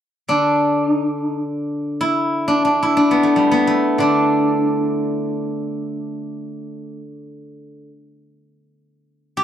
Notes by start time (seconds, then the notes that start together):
0.28 D3 D4
0.89 D#4
1.05 D4
1.22 D#4
1.38 D4
2.01 E4
2.48 D4
2.65 D4
2.83 E4
2.97 D4
3.11 B3
3.23 A3
3.36 G3
3.51 B3
3.67 A3
3.98 D3 D4
9.37 G4